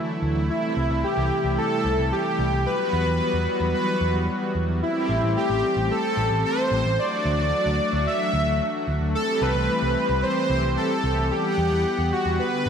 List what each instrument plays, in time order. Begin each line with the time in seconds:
Already playing: analog synth pad D3 E3 F#3 A3 E4, supersaw synth A4
0.23 picked electric bass D2
0.36 picked electric bass D2
0.49 analog synth pad C3 G3, supersaw synth E4
0.77 picked electric bass C2
0.90 picked electric bass C2
1.04 supersaw synth G4
1.17 picked electric bass C2
1.44 picked electric bass C2
1.58 supersaw synth A4
1.85 picked electric bass C2
1.98 picked electric bass C2
2.12 supersaw synth G4
2.39 picked electric bass C2
2.53 picked electric bass C2
2.66 analog synth pad F#3 B3 F#4, supersaw synth B4
2.93 picked electric bass E2
3.07 picked electric bass E2
3.34 picked electric bass E2
3.60 picked electric bass E2
3.74 supersaw synth B4
4.01 picked electric bass E2
4.14 picked electric bass E2
4.55 picked electric bass E2
4.68 picked electric bass E2
4.82 analog synth pad A3 C4 G4, supersaw synth E4
5.09 picked electric bass A1
5.23 picked electric bass A1
5.37 supersaw synth G4
5.50 picked electric bass A1
5.77 picked electric bass A1
5.91 supersaw synth A4
6.17 picked electric bass A1
6.31 picked electric bass A1
6.45 supersaw synth C5
6.72 picked electric bass A1
6.85 picked electric bass A1
6.98 analog synth pad F#3 D4 F#4, supersaw synth D5
7.25 picked electric bass D2
7.39 picked electric bass D2
7.66 picked electric bass D2
7.93 picked electric bass D2
8.07 supersaw synth E5
8.34 picked electric bass D2
8.47 picked electric bass D2
8.88 picked electric bass D2
9.01 picked electric bass D2
9.14 analog synth pad E3 G3 C4 G4, supersaw synth A4
9.42 picked electric bass C2, supersaw synth B4
9.55 picked electric bass C2
9.82 picked electric bass C2
10.09 picked electric bass C2
10.23 supersaw synth C5
10.50 picked electric bass C2
10.63 picked electric bass C2
10.77 supersaw synth A4
11.04 picked electric bass C2
11.17 picked electric bass C2
11.31 analog synth pad B3 F#5, supersaw synth G4
11.58 picked electric bass E2
11.71 picked electric bass E2
11.98 picked electric bass E2
12.12 supersaw synth F#4
12.26 picked electric bass E2
12.39 analog synth pad D3 B4, supersaw synth B4
12.66 picked electric bass G1